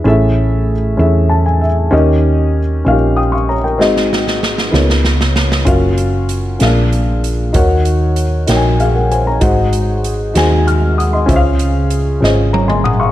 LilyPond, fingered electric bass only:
\new Staff \with { instrumentName = "Fingered electric bass" } { \clef bass \time 6/8 \key des \major \tempo 4. = 64 a,,4. e,4. | ees,4. bes,,4. | aes,,4. des,4. | ges,,4. bes,,4. |
ees,4. bes,,4. | aes,,4. ees,4. | des,4. aes,,4. | }